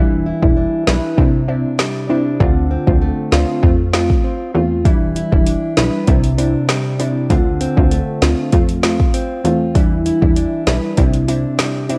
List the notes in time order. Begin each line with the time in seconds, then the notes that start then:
Already playing: E1 E3 G3 D4 E4
0.26 E4
0.42 E1 G3 D4 E4, kick
0.57 D4
0.87 B1 G3 D4 E4 B4, snare
1.17 C2 C3 C4 D4 E4, kick
1.48 C4 D4 E4
1.79 G3, snare
2.09 C4 D4 E4
2.40 D2 D3 C4 D4 F4, kick
2.71 C4
2.87 D2 C4 D4 F4, kick
3.02 A3
3.32 D2 C4 D4 F4, snare
3.63 F2 A3 C4 F4, kick
3.93 A3 C4 F4, snare
4.10 kick
4.24 C4
4.54 E2 A3 C4 F4
4.85 E1 E3 G3 D4 E4, kick, closed hi-hat
5.16 E4, closed hi-hat
5.32 E1 G3 D4 E4, kick
5.46 D4, closed hi-hat
5.77 B1 G3 D4 E4 B4, snare, closed hi-hat
6.07 C2 C3 C4 D4 E4, kick, closed hi-hat
6.24 closed hi-hat
6.38 C4 D4 E4, closed hi-hat
6.69 G3, snare, closed hi-hat
6.99 C4 D4 E4, closed hi-hat
7.30 D2 D3 C4 D4 F4, kick, closed hi-hat
7.61 C4, closed hi-hat
7.77 D2 C4 D4 F4, kick
7.91 A3, closed hi-hat
8.22 D2 C4 D4 F4, snare, closed hi-hat
8.52 F2 A3 C4 F4, kick, closed hi-hat
8.69 closed hi-hat
8.83 A3 C4 F4, snare, closed hi-hat
9.00 kick
9.14 C4, closed hi-hat
9.44 E2 A3 C4 F4, closed hi-hat
9.75 E1 E3 G3 D4 E4, kick, closed hi-hat
10.06 E4, closed hi-hat
10.22 E1 G3 D4 E4, kick
10.36 D4, closed hi-hat
10.67 B1 G3 D4 E4 B4, snare, closed hi-hat
10.97 C2 C3 C4 D4 E4, kick, closed hi-hat
11.13 closed hi-hat
11.28 C4 D4 E4, closed hi-hat
11.59 G3, snare, closed hi-hat
11.89 C4 D4 E4, closed hi-hat